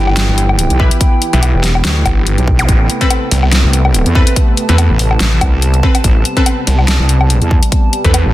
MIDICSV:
0, 0, Header, 1, 8, 480
1, 0, Start_track
1, 0, Tempo, 419580
1, 1152, Time_signature, 4, 2, 24, 8
1, 9536, End_track
2, 0, Start_track
2, 0, Title_t, "Ambient pad"
2, 0, Program_c, 0, 92
2, 0, Note_on_c, 0, 64, 77
2, 0, Note_on_c, 0, 79, 74
2, 3671, Note_off_c, 0, 64, 0
2, 4369, Note_off_c, 0, 79, 0
2, 4508, Note_on_c, 0, 81, 73
2, 9536, Note_off_c, 0, 81, 0
2, 9536, End_track
3, 0, Start_track
3, 0, Title_t, "Synth stab"
3, 0, Program_c, 1, 62
3, 911, Note_on_c, 1, 64, 88
3, 911, Note_on_c, 1, 67, 79
3, 911, Note_on_c, 1, 71, 97
3, 1120, Note_off_c, 1, 64, 0
3, 1120, Note_off_c, 1, 67, 0
3, 1120, Note_off_c, 1, 71, 0
3, 1523, Note_on_c, 1, 64, 80
3, 1523, Note_on_c, 1, 67, 73
3, 1523, Note_on_c, 1, 71, 89
3, 1726, Note_off_c, 1, 64, 0
3, 1726, Note_off_c, 1, 67, 0
3, 1726, Note_off_c, 1, 71, 0
3, 3443, Note_on_c, 1, 60, 97
3, 3443, Note_on_c, 1, 69, 90
3, 3443, Note_on_c, 1, 71, 110
3, 3561, Note_off_c, 1, 60, 0
3, 3561, Note_off_c, 1, 69, 0
3, 3561, Note_off_c, 1, 71, 0
3, 4751, Note_on_c, 1, 60, 87
3, 4751, Note_on_c, 1, 69, 78
3, 4751, Note_on_c, 1, 71, 97
3, 4961, Note_off_c, 1, 60, 0
3, 4961, Note_off_c, 1, 69, 0
3, 4961, Note_off_c, 1, 71, 0
3, 5363, Note_on_c, 1, 60, 82
3, 5363, Note_on_c, 1, 69, 77
3, 5363, Note_on_c, 1, 71, 90
3, 5566, Note_off_c, 1, 60, 0
3, 5566, Note_off_c, 1, 69, 0
3, 5566, Note_off_c, 1, 71, 0
3, 6671, Note_on_c, 1, 69, 76
3, 6672, Note_on_c, 1, 60, 84
3, 6672, Note_on_c, 1, 71, 93
3, 6811, Note_off_c, 1, 60, 0
3, 6811, Note_off_c, 1, 69, 0
3, 6811, Note_off_c, 1, 71, 0
3, 7283, Note_on_c, 1, 60, 100
3, 7283, Note_on_c, 1, 69, 90
3, 7283, Note_on_c, 1, 71, 110
3, 7401, Note_off_c, 1, 60, 0
3, 7401, Note_off_c, 1, 69, 0
3, 7401, Note_off_c, 1, 71, 0
3, 9203, Note_on_c, 1, 60, 82
3, 9203, Note_on_c, 1, 69, 75
3, 9203, Note_on_c, 1, 71, 88
3, 9406, Note_off_c, 1, 60, 0
3, 9406, Note_off_c, 1, 69, 0
3, 9406, Note_off_c, 1, 71, 0
3, 9536, End_track
4, 0, Start_track
4, 0, Title_t, "Supersaw synth"
4, 0, Program_c, 2, 81
4, 0, Note_on_c, 2, 52, 82
4, 0, Note_on_c, 2, 59, 74
4, 0, Note_on_c, 2, 67, 92
4, 3027, Note_off_c, 2, 52, 0
4, 3027, Note_off_c, 2, 67, 0
4, 3071, Note_on_c, 2, 57, 76
4, 3072, Note_on_c, 2, 48, 82
4, 6873, Note_off_c, 2, 57, 0
4, 6913, Note_on_c, 2, 55, 75
4, 9536, Note_off_c, 2, 48, 0
4, 9536, Note_off_c, 2, 55, 0
4, 9536, Note_off_c, 2, 59, 0
4, 9536, End_track
5, 0, Start_track
5, 0, Title_t, "Detuned saw bass"
5, 0, Program_c, 3, 39
5, 0, Note_on_c, 3, 31, 100
5, 303, Note_off_c, 3, 31, 0
5, 1524, Note_on_c, 3, 35, 100
5, 1743, Note_off_c, 3, 35, 0
5, 2352, Note_on_c, 3, 31, 94
5, 2703, Note_off_c, 3, 31, 0
5, 3792, Note_on_c, 3, 36, 97
5, 4143, Note_off_c, 3, 36, 0
5, 5364, Note_on_c, 3, 40, 99
5, 5583, Note_off_c, 3, 40, 0
5, 5952, Note_on_c, 3, 33, 101
5, 6175, Note_off_c, 3, 33, 0
5, 7632, Note_on_c, 3, 36, 102
5, 7983, Note_off_c, 3, 36, 0
5, 9204, Note_on_c, 3, 40, 97
5, 9423, Note_off_c, 3, 40, 0
5, 9536, End_track
6, 0, Start_track
6, 0, Title_t, "Wobble bass"
6, 0, Program_c, 4, 39
6, 323, Note_on_c, 4, 31, 98
6, 782, Note_off_c, 4, 31, 0
6, 803, Note_on_c, 4, 35, 100
6, 1022, Note_off_c, 4, 35, 0
6, 1763, Note_on_c, 4, 28, 93
6, 2094, Note_off_c, 4, 28, 0
6, 2112, Note_on_c, 4, 38, 99
6, 2335, Note_off_c, 4, 38, 0
6, 2724, Note_on_c, 4, 35, 97
6, 3055, Note_off_c, 4, 35, 0
6, 3072, Note_on_c, 4, 33, 99
6, 3295, Note_off_c, 4, 33, 0
6, 4164, Note_on_c, 4, 36, 95
6, 4623, Note_off_c, 4, 36, 0
6, 4644, Note_on_c, 4, 40, 100
6, 4862, Note_off_c, 4, 40, 0
6, 5604, Note_on_c, 4, 33, 99
6, 5935, Note_off_c, 4, 33, 0
6, 6192, Note_on_c, 4, 36, 100
6, 6655, Note_off_c, 4, 36, 0
6, 6912, Note_on_c, 4, 33, 94
6, 7135, Note_off_c, 4, 33, 0
6, 8004, Note_on_c, 4, 36, 96
6, 8463, Note_off_c, 4, 36, 0
6, 8483, Note_on_c, 4, 40, 99
6, 8702, Note_off_c, 4, 40, 0
6, 9443, Note_on_c, 4, 33, 97
6, 9536, Note_off_c, 4, 33, 0
6, 9536, End_track
7, 0, Start_track
7, 0, Title_t, "Zap"
7, 0, Program_c, 5, 103
7, 2964, Note_on_c, 5, 60, 61
7, 3072, Note_off_c, 5, 60, 0
7, 9536, End_track
8, 0, Start_track
8, 0, Title_t, "Drums"
8, 83, Note_on_c, 9, 77, 52
8, 192, Note_on_c, 9, 38, 127
8, 192, Note_on_c, 9, 42, 82
8, 198, Note_off_c, 9, 77, 0
8, 306, Note_off_c, 9, 38, 0
8, 306, Note_off_c, 9, 42, 0
8, 432, Note_on_c, 9, 42, 54
8, 546, Note_off_c, 9, 42, 0
8, 564, Note_on_c, 9, 77, 61
8, 672, Note_on_c, 9, 42, 82
8, 678, Note_off_c, 9, 77, 0
8, 786, Note_off_c, 9, 42, 0
8, 804, Note_on_c, 9, 42, 37
8, 911, Note_on_c, 9, 36, 107
8, 918, Note_off_c, 9, 42, 0
8, 1026, Note_off_c, 9, 36, 0
8, 1044, Note_on_c, 9, 42, 63
8, 1151, Note_on_c, 9, 36, 123
8, 1152, Note_off_c, 9, 42, 0
8, 1152, Note_on_c, 9, 42, 79
8, 1266, Note_off_c, 9, 36, 0
8, 1266, Note_off_c, 9, 42, 0
8, 1392, Note_on_c, 9, 42, 56
8, 1507, Note_off_c, 9, 42, 0
8, 1524, Note_on_c, 9, 42, 37
8, 1632, Note_off_c, 9, 42, 0
8, 1632, Note_on_c, 9, 42, 79
8, 1632, Note_on_c, 9, 77, 54
8, 1747, Note_off_c, 9, 42, 0
8, 1747, Note_off_c, 9, 77, 0
8, 1872, Note_on_c, 9, 38, 64
8, 1872, Note_on_c, 9, 46, 87
8, 1987, Note_off_c, 9, 38, 0
8, 1987, Note_off_c, 9, 46, 0
8, 2004, Note_on_c, 9, 77, 54
8, 2112, Note_on_c, 9, 38, 123
8, 2112, Note_on_c, 9, 42, 77
8, 2118, Note_off_c, 9, 77, 0
8, 2227, Note_off_c, 9, 38, 0
8, 2227, Note_off_c, 9, 42, 0
8, 2352, Note_on_c, 9, 36, 66
8, 2352, Note_on_c, 9, 42, 51
8, 2352, Note_on_c, 9, 77, 80
8, 2466, Note_off_c, 9, 36, 0
8, 2466, Note_off_c, 9, 42, 0
8, 2466, Note_off_c, 9, 77, 0
8, 2592, Note_on_c, 9, 42, 79
8, 2706, Note_off_c, 9, 42, 0
8, 2724, Note_on_c, 9, 42, 37
8, 2832, Note_on_c, 9, 36, 111
8, 2838, Note_off_c, 9, 42, 0
8, 2946, Note_off_c, 9, 36, 0
8, 2964, Note_on_c, 9, 42, 60
8, 2964, Note_on_c, 9, 77, 53
8, 3072, Note_off_c, 9, 42, 0
8, 3072, Note_on_c, 9, 36, 119
8, 3072, Note_on_c, 9, 42, 75
8, 3079, Note_off_c, 9, 77, 0
8, 3186, Note_off_c, 9, 36, 0
8, 3187, Note_off_c, 9, 42, 0
8, 3312, Note_on_c, 9, 42, 51
8, 3427, Note_off_c, 9, 42, 0
8, 3444, Note_on_c, 9, 36, 64
8, 3444, Note_on_c, 9, 42, 35
8, 3552, Note_off_c, 9, 42, 0
8, 3552, Note_on_c, 9, 42, 74
8, 3552, Note_on_c, 9, 77, 54
8, 3558, Note_off_c, 9, 36, 0
8, 3666, Note_off_c, 9, 42, 0
8, 3666, Note_off_c, 9, 77, 0
8, 3792, Note_on_c, 9, 46, 88
8, 3906, Note_off_c, 9, 46, 0
8, 3924, Note_on_c, 9, 77, 55
8, 4032, Note_on_c, 9, 38, 119
8, 4032, Note_on_c, 9, 42, 73
8, 4038, Note_off_c, 9, 77, 0
8, 4146, Note_off_c, 9, 38, 0
8, 4146, Note_off_c, 9, 42, 0
8, 4272, Note_on_c, 9, 42, 50
8, 4386, Note_off_c, 9, 42, 0
8, 4404, Note_on_c, 9, 77, 64
8, 4512, Note_on_c, 9, 42, 75
8, 4518, Note_off_c, 9, 77, 0
8, 4627, Note_off_c, 9, 42, 0
8, 4644, Note_on_c, 9, 42, 36
8, 4752, Note_on_c, 9, 36, 103
8, 4758, Note_off_c, 9, 42, 0
8, 4866, Note_off_c, 9, 36, 0
8, 4884, Note_on_c, 9, 42, 60
8, 4992, Note_off_c, 9, 42, 0
8, 4992, Note_on_c, 9, 36, 115
8, 4992, Note_on_c, 9, 42, 75
8, 5106, Note_off_c, 9, 36, 0
8, 5107, Note_off_c, 9, 42, 0
8, 5232, Note_on_c, 9, 42, 52
8, 5347, Note_off_c, 9, 42, 0
8, 5364, Note_on_c, 9, 42, 36
8, 5473, Note_off_c, 9, 42, 0
8, 5473, Note_on_c, 9, 42, 75
8, 5473, Note_on_c, 9, 77, 56
8, 5587, Note_off_c, 9, 42, 0
8, 5587, Note_off_c, 9, 77, 0
8, 5712, Note_on_c, 9, 46, 93
8, 5827, Note_off_c, 9, 46, 0
8, 5844, Note_on_c, 9, 77, 55
8, 5952, Note_on_c, 9, 38, 115
8, 5952, Note_on_c, 9, 42, 76
8, 5958, Note_off_c, 9, 77, 0
8, 6067, Note_off_c, 9, 38, 0
8, 6067, Note_off_c, 9, 42, 0
8, 6192, Note_on_c, 9, 36, 61
8, 6192, Note_on_c, 9, 42, 51
8, 6192, Note_on_c, 9, 77, 82
8, 6306, Note_off_c, 9, 36, 0
8, 6307, Note_off_c, 9, 42, 0
8, 6307, Note_off_c, 9, 77, 0
8, 6432, Note_on_c, 9, 42, 79
8, 6546, Note_off_c, 9, 42, 0
8, 6564, Note_on_c, 9, 42, 35
8, 6672, Note_on_c, 9, 36, 100
8, 6678, Note_off_c, 9, 42, 0
8, 6786, Note_off_c, 9, 36, 0
8, 6804, Note_on_c, 9, 42, 59
8, 6804, Note_on_c, 9, 77, 55
8, 6912, Note_off_c, 9, 42, 0
8, 6912, Note_on_c, 9, 36, 109
8, 6912, Note_on_c, 9, 42, 77
8, 6918, Note_off_c, 9, 77, 0
8, 7027, Note_off_c, 9, 36, 0
8, 7027, Note_off_c, 9, 42, 0
8, 7152, Note_on_c, 9, 42, 54
8, 7266, Note_off_c, 9, 42, 0
8, 7284, Note_on_c, 9, 36, 61
8, 7284, Note_on_c, 9, 42, 38
8, 7392, Note_off_c, 9, 42, 0
8, 7392, Note_on_c, 9, 42, 77
8, 7392, Note_on_c, 9, 77, 54
8, 7398, Note_off_c, 9, 36, 0
8, 7506, Note_off_c, 9, 42, 0
8, 7506, Note_off_c, 9, 77, 0
8, 7632, Note_on_c, 9, 46, 98
8, 7747, Note_off_c, 9, 46, 0
8, 7764, Note_on_c, 9, 77, 53
8, 7872, Note_on_c, 9, 38, 115
8, 7872, Note_on_c, 9, 42, 79
8, 7878, Note_off_c, 9, 77, 0
8, 7986, Note_off_c, 9, 38, 0
8, 7986, Note_off_c, 9, 42, 0
8, 8112, Note_on_c, 9, 42, 51
8, 8227, Note_off_c, 9, 42, 0
8, 8244, Note_on_c, 9, 77, 64
8, 8352, Note_on_c, 9, 42, 81
8, 8358, Note_off_c, 9, 77, 0
8, 8467, Note_off_c, 9, 42, 0
8, 8484, Note_on_c, 9, 42, 36
8, 8592, Note_on_c, 9, 36, 103
8, 8599, Note_off_c, 9, 42, 0
8, 8706, Note_off_c, 9, 36, 0
8, 8724, Note_on_c, 9, 42, 59
8, 8832, Note_off_c, 9, 42, 0
8, 8832, Note_on_c, 9, 36, 113
8, 8832, Note_on_c, 9, 42, 78
8, 8946, Note_off_c, 9, 36, 0
8, 8946, Note_off_c, 9, 42, 0
8, 9072, Note_on_c, 9, 42, 55
8, 9186, Note_off_c, 9, 42, 0
8, 9203, Note_on_c, 9, 36, 60
8, 9204, Note_on_c, 9, 42, 39
8, 9312, Note_off_c, 9, 42, 0
8, 9312, Note_on_c, 9, 42, 80
8, 9312, Note_on_c, 9, 77, 52
8, 9318, Note_off_c, 9, 36, 0
8, 9426, Note_off_c, 9, 42, 0
8, 9426, Note_off_c, 9, 77, 0
8, 9536, End_track
0, 0, End_of_file